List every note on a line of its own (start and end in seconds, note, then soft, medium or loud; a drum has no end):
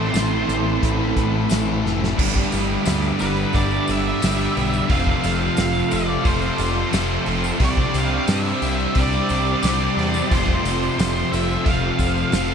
0.00 2.15 A2 medium
0.00 2.16 A2 medium
0.00 2.16 E3 medium
0.00 2.17 A3 loud
0.00 2.15 C4 medium
0.00 2.17 C4 loud
0.00 2.17 E4 loud
0.00 2.14 A4 medium
0.00 2.17 A4 loud
0.00 0.77 C5 loud
0.00 2.14 E5 medium
0.00 2.15 A5 medium
0.14 0.43 A1 loud
0.14 0.46 A2 medium
0.14 0.46 E3 medium
0.14 0.47 A3 medium
0.14 snare loud
0.14 closed hi-hat loud
0.14 tambourine medium
0.47 0.78 A1 medium
0.47 0.80 A2 medium
0.47 0.81 E3 loud
0.47 0.81 A3 medium
0.47 closed hi-hat medium
0.77 1.49 B4 loud
0.81 1.12 A1 medium
0.81 1.50 A2 loud
0.81 1.50 E3 loud
0.81 1.51 A3 loud
0.81 kick loud
0.81 closed hi-hat medium
1.16 1.45 A1 medium
1.16 kick medium
1.16 closed hi-hat medium
1.50 1.80 A1 medium
1.50 1.84 A2 loud
1.50 1.84 E3 loud
1.50 1.85 A3 loud
1.50 snare loud
1.50 closed hi-hat medium
1.50 tambourine medium
1.84 2.13 F1 medium
1.84 2.17 A2 medium
1.84 2.17 E3 loud
1.84 2.17 A3 medium
1.84 snare medium
2.04 snare medium
2.17 2.42 G1 medium
2.17 2.83 G2 medium
2.17 3.52 G2 loud
2.17 3.53 D3 loud
2.17 2.85 D3 medium
2.17 3.53 G3 loud
2.17 2.86 G3 loud
2.17 3.54 B3 medium
2.17 3.54 D4 loud
2.17 4.88 G4 medium
2.17 3.55 G4 loud
2.17 4.88 D5 medium
2.17 4.88 E5 medium
2.17 4.88 B5 medium
2.17 kick loud
2.17 crash loud
2.36 kick medium
2.52 2.76 G1 medium
2.52 open hi-hat medium
2.52 tambourine medium
2.84 3.10 D2 medium
2.84 3.52 G2 medium
2.84 3.53 D3 medium
2.84 3.54 G3 medium
2.84 snare loud
2.84 open hi-hat medium
2.84 tambourine medium
3.03 tambourine soft
3.19 3.44 G1 medium
3.19 4.21 D3 medium
3.19 4.19 G3 medium
3.19 3.55 B4 medium
3.19 open hi-hat medium
3.19 tambourine medium
3.23 4.19 G2 medium
3.36 tambourine soft
3.53 3.78 G1 medium
3.53 4.20 G2 loud
3.53 4.55 G2 medium
3.53 4.56 D3 loud
3.53 3.87 D3 loud
3.53 4.21 G3 medium
3.53 3.85 G3 loud
3.53 4.21 B3 medium
3.53 4.22 D4 loud
3.53 4.23 G4 loud
3.53 3.89 D5 medium
3.53 kick loud
3.53 open hi-hat medium
3.53 tambourine soft
3.71 tambourine soft
3.86 4.12 G1 loud
3.86 4.22 D3 medium
3.86 4.23 G3 medium
3.86 open hi-hat medium
3.86 tambourine medium
3.91 4.90 E5 loud
4.22 4.46 G1 medium
4.22 4.88 G2 medium
4.22 4.88 D3 medium
4.22 4.57 G3 medium
4.22 4.89 G3 medium
4.22 4.56 B3 medium
4.22 4.54 D4 medium
4.22 4.54 G4 loud
4.22 snare loud
4.22 open hi-hat medium
4.22 tambourine loud
4.55 4.80 B1 medium
4.55 4.88 G3 medium
4.55 4.88 B3 medium
4.55 4.88 D4 medium
4.55 4.87 G4 medium
4.55 open hi-hat medium
4.74 tambourine medium
4.88 5.13 F1 loud
4.88 5.55 F2 medium
4.88 5.57 C3 loud
4.88 6.22 F3 loud
4.88 5.58 F3 loud
4.88 6.25 C4 medium
4.88 6.25 F4 loud
4.88 7.58 A4 medium
4.88 6.26 A4 loud
4.88 12.54 C5 medium
4.88 7.57 F5 medium
4.88 5.92 F5 loud
4.88 12.54 C6 medium
4.88 kick loud
4.88 open hi-hat medium
5.07 kick medium
5.24 5.48 F1 loud
5.24 open hi-hat medium
5.24 tambourine medium
5.56 5.81 F1 loud
5.56 6.22 F2 medium
5.56 6.23 C3 medium
5.56 6.24 F3 medium
5.56 snare loud
5.56 open hi-hat medium
5.56 tambourine medium
5.75 tambourine soft
5.91 6.16 F1 medium
5.91 6.92 C3 medium
5.91 6.92 F3 medium
5.91 6.27 D5 medium
5.91 open hi-hat medium
5.91 tambourine medium
5.95 6.92 F2 medium
6.08 tambourine soft
6.23 6.49 F1 loud
6.23 6.90 F2 medium
6.23 6.60 C3 loud
6.23 6.90 F3 medium
6.23 6.56 F3 loud
6.23 6.92 C4 loud
6.23 6.92 F4 loud
6.23 6.93 A4 loud
6.23 6.89 C5 medium
6.23 kick loud
6.23 open hi-hat medium
6.23 tambourine soft
6.42 tambourine soft
6.58 6.83 F1 loud
6.58 6.92 C3 medium
6.58 6.93 F3 medium
6.58 open hi-hat medium
6.58 tambourine medium
6.91 7.17 F1 loud
6.91 7.58 F2 medium
6.91 7.58 C3 medium
6.91 7.58 F3 medium
6.91 7.59 F3 loud
6.91 7.28 C4 medium
6.91 7.27 F4 medium
6.91 7.24 A4 medium
6.91 snare loud
6.91 open hi-hat medium
6.91 tambourine medium
7.26 7.51 F1 medium
7.26 7.61 C4 medium
7.26 7.59 F4 medium
7.26 7.58 A4 medium
7.26 open hi-hat medium
7.44 tambourine medium
7.58 7.84 C2 medium
7.58 8.27 C3 medium
7.58 8.93 C3 medium
7.58 8.94 G3 loud
7.58 8.28 G3 loud
7.58 8.95 C4 loud
7.58 10.27 G4 medium
7.58 10.28 D5 medium
7.58 kick loud
7.58 open hi-hat medium
7.62 8.31 C4 loud
7.62 8.96 D4 medium
7.62 8.96 G4 loud
7.62 7.98 D5 loud
7.77 kick medium
7.94 8.18 C2 medium
7.94 open hi-hat medium
7.94 tambourine medium
7.98 8.31 F5 loud
8.28 8.52 G2 loud
8.28 8.95 C3 medium
8.28 8.97 G3 medium
8.28 8.97 C4 medium
8.28 9.00 E5 loud
8.28 snare loud
8.28 open hi-hat medium
8.28 tambourine medium
8.45 tambourine soft
8.62 8.86 C2 loud
8.62 9.61 C3 medium
8.62 9.62 G3 medium
8.62 9.62 C4 medium
8.62 open hi-hat medium
8.62 tambourine medium
8.79 tambourine soft
8.95 9.20 C2 medium
8.95 9.97 C3 medium
8.95 9.62 C3 loud
8.95 9.61 G3 loud
8.95 9.30 G3 loud
8.95 9.62 C4 loud
8.95 9.27 C4 loud
8.95 9.63 D4 loud
8.95 9.64 G4 loud
8.95 kick loud
8.95 open hi-hat medium
8.95 tambourine soft
9.00 10.37 D5 loud
9.13 tambourine soft
9.29 9.54 C2 loud
9.29 9.64 G3 medium
9.29 9.65 C4 medium
9.29 open hi-hat medium
9.29 tambourine medium
9.62 9.87 C2 loud
9.62 10.29 C3 medium
9.62 10.29 G3 medium
9.62 10.30 G3 medium
9.62 9.96 C4 medium
9.62 10.30 C4 medium
9.62 9.95 D4 medium
9.62 9.94 G4 loud
9.62 snare loud
9.62 open hi-hat loud
9.62 tambourine loud
9.95 10.21 E2 medium
9.95 10.29 C4 medium
9.95 10.29 D4 medium
9.95 10.28 G4 medium
9.99 snare soft
9.99 open hi-hat medium
10.14 tambourine medium
10.29 10.55 F1 loud
10.29 10.97 F2 loud
10.29 10.98 C3 medium
10.29 11.63 F3 medium
10.29 10.99 F3 loud
10.29 11.64 C4 loud
10.29 12.54 F4 medium
10.29 11.65 F4 loud
10.29 12.54 A4 medium
10.29 11.67 A4 loud
10.29 11.36 C5 medium
10.29 kick loud
10.29 open hi-hat medium
10.29 tambourine soft
10.48 kick medium
10.64 10.88 F1 medium
10.64 open hi-hat medium
10.64 tambourine medium
10.83 tambourine soft
10.98 11.22 F1 loud
10.98 11.64 F2 medium
10.98 11.65 C3 medium
10.98 11.66 F3 medium
10.98 snare loud
10.98 open hi-hat medium
10.98 tambourine medium
11.16 tambourine soft
11.32 11.56 F1 medium
11.32 12.33 C3 medium
11.32 12.31 F3 medium
11.32 11.67 E5 medium
11.32 open hi-hat medium
11.32 tambourine medium
11.36 12.33 F2 medium
11.50 tambourine soft
11.65 11.90 F1 medium
11.65 12.31 F2 medium
11.65 11.99 C3 loud
11.65 12.29 F3 loud
11.65 11.96 F3 medium
11.65 12.31 C4 loud
11.65 12.31 F4 loud
11.65 12.32 A4 medium
11.65 kick loud
11.65 open hi-hat medium
11.65 tambourine soft
11.69 12.54 F5 medium
11.98 12.23 F1 medium
11.98 12.32 C3 medium
11.98 12.33 F3 medium
11.98 kick medium
11.98 open hi-hat medium
11.98 tambourine medium
12.17 tambourine soft
12.30 12.54 F1 medium
12.30 12.54 F2 medium
12.30 12.54 C3 medium
12.30 12.54 F3 medium
12.30 12.54 C4 medium
12.30 12.54 F4 medium
12.30 12.54 A4 medium
12.30 snare loud
12.30 open hi-hat medium
12.30 tambourine medium
12.35 12.54 F3 medium